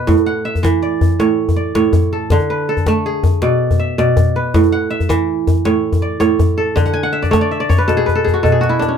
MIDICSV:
0, 0, Header, 1, 3, 480
1, 0, Start_track
1, 0, Tempo, 371287
1, 106, Time_signature, 12, 3, 24, 8
1, 11604, End_track
2, 0, Start_track
2, 0, Title_t, "Kora"
2, 0, Program_c, 0, 46
2, 0, Note_on_c, 0, 47, 65
2, 0, Note_on_c, 0, 57, 81
2, 0, Note_on_c, 0, 71, 59
2, 0, Note_on_c, 0, 74, 62
2, 0, Note_on_c, 0, 76, 54
2, 94, Note_on_c, 0, 45, 78
2, 171, Note_off_c, 0, 47, 0
2, 341, Note_on_c, 0, 78, 66
2, 486, Note_off_c, 0, 76, 0
2, 525, Note_off_c, 0, 57, 0
2, 582, Note_on_c, 0, 76, 63
2, 814, Note_on_c, 0, 52, 76
2, 826, Note_off_c, 0, 74, 0
2, 1066, Note_on_c, 0, 74, 55
2, 1459, Note_off_c, 0, 71, 0
2, 1531, Note_off_c, 0, 45, 0
2, 1545, Note_on_c, 0, 45, 64
2, 1549, Note_on_c, 0, 73, 54
2, 1588, Note_off_c, 0, 78, 0
2, 1919, Note_off_c, 0, 76, 0
2, 2017, Note_off_c, 0, 74, 0
2, 2022, Note_on_c, 0, 74, 52
2, 2249, Note_off_c, 0, 45, 0
2, 2257, Note_off_c, 0, 73, 0
2, 2263, Note_on_c, 0, 73, 57
2, 2264, Note_on_c, 0, 45, 69
2, 2748, Note_on_c, 0, 69, 59
2, 2997, Note_on_c, 0, 50, 84
2, 3051, Note_off_c, 0, 45, 0
2, 3051, Note_off_c, 0, 52, 0
2, 3074, Note_off_c, 0, 73, 0
2, 3232, Note_on_c, 0, 71, 62
2, 3454, Note_off_c, 0, 74, 0
2, 3471, Note_off_c, 0, 69, 0
2, 3476, Note_on_c, 0, 69, 64
2, 3721, Note_on_c, 0, 57, 71
2, 3954, Note_on_c, 0, 68, 62
2, 4425, Note_on_c, 0, 47, 76
2, 4427, Note_on_c, 0, 74, 58
2, 4491, Note_off_c, 0, 50, 0
2, 4821, Note_off_c, 0, 71, 0
2, 4906, Note_on_c, 0, 76, 57
2, 5134, Note_off_c, 0, 47, 0
2, 5144, Note_off_c, 0, 74, 0
2, 5149, Note_on_c, 0, 47, 67
2, 5149, Note_on_c, 0, 74, 60
2, 5179, Note_off_c, 0, 69, 0
2, 5635, Note_on_c, 0, 71, 59
2, 5717, Note_off_c, 0, 68, 0
2, 5875, Note_on_c, 0, 45, 80
2, 5929, Note_off_c, 0, 47, 0
2, 6107, Note_on_c, 0, 78, 65
2, 6242, Note_off_c, 0, 76, 0
2, 6303, Note_off_c, 0, 57, 0
2, 6340, Note_on_c, 0, 76, 66
2, 6581, Note_off_c, 0, 74, 0
2, 6583, Note_on_c, 0, 52, 73
2, 7225, Note_off_c, 0, 71, 0
2, 7295, Note_off_c, 0, 45, 0
2, 7309, Note_on_c, 0, 73, 55
2, 7310, Note_on_c, 0, 45, 72
2, 7354, Note_off_c, 0, 78, 0
2, 7677, Note_off_c, 0, 76, 0
2, 7783, Note_on_c, 0, 74, 56
2, 7999, Note_off_c, 0, 45, 0
2, 8012, Note_off_c, 0, 73, 0
2, 8014, Note_on_c, 0, 45, 68
2, 8017, Note_on_c, 0, 73, 60
2, 8501, Note_on_c, 0, 69, 61
2, 8735, Note_on_c, 0, 50, 80
2, 8807, Note_off_c, 0, 45, 0
2, 8807, Note_off_c, 0, 52, 0
2, 8812, Note_off_c, 0, 73, 0
2, 8863, Note_on_c, 0, 78, 69
2, 8965, Note_on_c, 0, 80, 71
2, 9043, Note_off_c, 0, 69, 0
2, 9086, Note_off_c, 0, 78, 0
2, 9091, Note_on_c, 0, 78, 65
2, 9212, Note_on_c, 0, 76, 68
2, 9216, Note_off_c, 0, 74, 0
2, 9339, Note_on_c, 0, 74, 67
2, 9450, Note_on_c, 0, 57, 74
2, 9451, Note_on_c, 0, 73, 62
2, 9528, Note_off_c, 0, 80, 0
2, 9577, Note_off_c, 0, 74, 0
2, 9582, Note_on_c, 0, 74, 71
2, 9709, Note_off_c, 0, 76, 0
2, 9714, Note_on_c, 0, 76, 53
2, 9821, Note_off_c, 0, 74, 0
2, 9826, Note_on_c, 0, 74, 71
2, 9904, Note_off_c, 0, 73, 0
2, 9946, Note_on_c, 0, 73, 69
2, 10063, Note_on_c, 0, 71, 64
2, 10183, Note_on_c, 0, 47, 65
2, 10184, Note_on_c, 0, 69, 65
2, 10247, Note_off_c, 0, 50, 0
2, 10303, Note_on_c, 0, 68, 73
2, 10338, Note_off_c, 0, 78, 0
2, 10380, Note_off_c, 0, 57, 0
2, 10416, Note_off_c, 0, 71, 0
2, 10422, Note_on_c, 0, 71, 61
2, 10537, Note_off_c, 0, 69, 0
2, 10542, Note_on_c, 0, 69, 67
2, 10619, Note_off_c, 0, 68, 0
2, 10658, Note_on_c, 0, 68, 60
2, 10777, Note_on_c, 0, 66, 63
2, 10884, Note_off_c, 0, 47, 0
2, 10896, Note_off_c, 0, 69, 0
2, 10898, Note_on_c, 0, 47, 68
2, 10901, Note_on_c, 0, 69, 56
2, 10978, Note_off_c, 0, 68, 0
2, 11015, Note_on_c, 0, 68, 65
2, 11050, Note_off_c, 0, 76, 0
2, 11124, Note_off_c, 0, 66, 0
2, 11129, Note_on_c, 0, 66, 64
2, 11239, Note_on_c, 0, 64, 62
2, 11259, Note_off_c, 0, 74, 0
2, 11369, Note_on_c, 0, 62, 69
2, 11446, Note_off_c, 0, 73, 0
2, 11486, Note_on_c, 0, 61, 58
2, 11590, Note_off_c, 0, 69, 0
2, 11604, Note_off_c, 0, 47, 0
2, 11604, Note_off_c, 0, 61, 0
2, 11604, Note_off_c, 0, 62, 0
2, 11604, Note_off_c, 0, 64, 0
2, 11604, Note_off_c, 0, 66, 0
2, 11604, Note_off_c, 0, 68, 0
2, 11604, Note_off_c, 0, 71, 0
2, 11604, End_track
3, 0, Start_track
3, 0, Title_t, "Djembe"
3, 1, Note_on_c, 9, 62, 20
3, 110, Note_off_c, 9, 62, 0
3, 110, Note_on_c, 9, 62, 59
3, 110, Note_on_c, 9, 64, 62
3, 218, Note_on_c, 9, 63, 45
3, 239, Note_off_c, 9, 62, 0
3, 239, Note_off_c, 9, 64, 0
3, 348, Note_off_c, 9, 63, 0
3, 717, Note_on_c, 9, 64, 47
3, 834, Note_on_c, 9, 62, 71
3, 834, Note_on_c, 9, 63, 68
3, 846, Note_off_c, 9, 64, 0
3, 963, Note_off_c, 9, 62, 0
3, 963, Note_off_c, 9, 63, 0
3, 1309, Note_on_c, 9, 63, 59
3, 1309, Note_on_c, 9, 64, 68
3, 1429, Note_on_c, 9, 62, 22
3, 1438, Note_off_c, 9, 63, 0
3, 1438, Note_off_c, 9, 64, 0
3, 1548, Note_off_c, 9, 62, 0
3, 1548, Note_on_c, 9, 62, 64
3, 1678, Note_off_c, 9, 62, 0
3, 1921, Note_on_c, 9, 63, 52
3, 1921, Note_on_c, 9, 64, 53
3, 2050, Note_off_c, 9, 63, 0
3, 2050, Note_off_c, 9, 64, 0
3, 2264, Note_on_c, 9, 62, 66
3, 2391, Note_off_c, 9, 62, 0
3, 2391, Note_on_c, 9, 62, 25
3, 2493, Note_off_c, 9, 62, 0
3, 2493, Note_on_c, 9, 62, 20
3, 2493, Note_on_c, 9, 63, 65
3, 2493, Note_on_c, 9, 64, 65
3, 2622, Note_off_c, 9, 62, 0
3, 2622, Note_off_c, 9, 63, 0
3, 2622, Note_off_c, 9, 64, 0
3, 2977, Note_on_c, 9, 62, 66
3, 2977, Note_on_c, 9, 64, 62
3, 3100, Note_on_c, 9, 63, 49
3, 3106, Note_off_c, 9, 62, 0
3, 3106, Note_off_c, 9, 64, 0
3, 3229, Note_off_c, 9, 63, 0
3, 3581, Note_on_c, 9, 64, 45
3, 3703, Note_on_c, 9, 62, 71
3, 3703, Note_on_c, 9, 63, 67
3, 3710, Note_off_c, 9, 64, 0
3, 3818, Note_off_c, 9, 62, 0
3, 3818, Note_on_c, 9, 62, 19
3, 3832, Note_off_c, 9, 63, 0
3, 3947, Note_off_c, 9, 62, 0
3, 4183, Note_on_c, 9, 63, 60
3, 4183, Note_on_c, 9, 64, 62
3, 4304, Note_on_c, 9, 62, 20
3, 4312, Note_off_c, 9, 63, 0
3, 4312, Note_off_c, 9, 64, 0
3, 4419, Note_off_c, 9, 62, 0
3, 4419, Note_on_c, 9, 62, 62
3, 4548, Note_off_c, 9, 62, 0
3, 4793, Note_on_c, 9, 63, 48
3, 4793, Note_on_c, 9, 64, 52
3, 4922, Note_off_c, 9, 63, 0
3, 4922, Note_off_c, 9, 64, 0
3, 5157, Note_on_c, 9, 62, 64
3, 5280, Note_off_c, 9, 62, 0
3, 5280, Note_on_c, 9, 62, 20
3, 5387, Note_off_c, 9, 62, 0
3, 5387, Note_on_c, 9, 62, 19
3, 5387, Note_on_c, 9, 63, 65
3, 5387, Note_on_c, 9, 64, 63
3, 5517, Note_off_c, 9, 62, 0
3, 5517, Note_off_c, 9, 63, 0
3, 5517, Note_off_c, 9, 64, 0
3, 5873, Note_on_c, 9, 62, 59
3, 5873, Note_on_c, 9, 64, 60
3, 5989, Note_on_c, 9, 63, 46
3, 6002, Note_off_c, 9, 62, 0
3, 6002, Note_off_c, 9, 64, 0
3, 6118, Note_off_c, 9, 63, 0
3, 6467, Note_on_c, 9, 64, 44
3, 6592, Note_on_c, 9, 62, 70
3, 6592, Note_on_c, 9, 63, 70
3, 6597, Note_off_c, 9, 64, 0
3, 6722, Note_off_c, 9, 62, 0
3, 6722, Note_off_c, 9, 63, 0
3, 7078, Note_on_c, 9, 63, 63
3, 7078, Note_on_c, 9, 64, 58
3, 7185, Note_on_c, 9, 62, 21
3, 7207, Note_off_c, 9, 63, 0
3, 7207, Note_off_c, 9, 64, 0
3, 7308, Note_off_c, 9, 62, 0
3, 7308, Note_on_c, 9, 62, 61
3, 7437, Note_off_c, 9, 62, 0
3, 7660, Note_on_c, 9, 63, 55
3, 7660, Note_on_c, 9, 64, 47
3, 7790, Note_off_c, 9, 63, 0
3, 7790, Note_off_c, 9, 64, 0
3, 8024, Note_on_c, 9, 62, 63
3, 8143, Note_off_c, 9, 62, 0
3, 8143, Note_on_c, 9, 62, 22
3, 8267, Note_off_c, 9, 62, 0
3, 8267, Note_on_c, 9, 62, 19
3, 8267, Note_on_c, 9, 63, 63
3, 8267, Note_on_c, 9, 64, 61
3, 8396, Note_off_c, 9, 62, 0
3, 8396, Note_off_c, 9, 63, 0
3, 8396, Note_off_c, 9, 64, 0
3, 8750, Note_on_c, 9, 62, 58
3, 8750, Note_on_c, 9, 64, 53
3, 8877, Note_on_c, 9, 63, 49
3, 8879, Note_off_c, 9, 62, 0
3, 8879, Note_off_c, 9, 64, 0
3, 9006, Note_off_c, 9, 63, 0
3, 9108, Note_on_c, 9, 62, 22
3, 9237, Note_off_c, 9, 62, 0
3, 9355, Note_on_c, 9, 64, 40
3, 9480, Note_on_c, 9, 62, 69
3, 9480, Note_on_c, 9, 63, 71
3, 9485, Note_off_c, 9, 64, 0
3, 9610, Note_off_c, 9, 62, 0
3, 9610, Note_off_c, 9, 63, 0
3, 9953, Note_on_c, 9, 63, 64
3, 9953, Note_on_c, 9, 64, 55
3, 10083, Note_off_c, 9, 63, 0
3, 10083, Note_off_c, 9, 64, 0
3, 10202, Note_on_c, 9, 62, 64
3, 10331, Note_off_c, 9, 62, 0
3, 10450, Note_on_c, 9, 64, 41
3, 10579, Note_off_c, 9, 64, 0
3, 10698, Note_on_c, 9, 64, 41
3, 10827, Note_off_c, 9, 64, 0
3, 10919, Note_on_c, 9, 64, 51
3, 11048, Note_off_c, 9, 64, 0
3, 11163, Note_on_c, 9, 62, 49
3, 11292, Note_off_c, 9, 62, 0
3, 11405, Note_on_c, 9, 62, 53
3, 11534, Note_off_c, 9, 62, 0
3, 11604, End_track
0, 0, End_of_file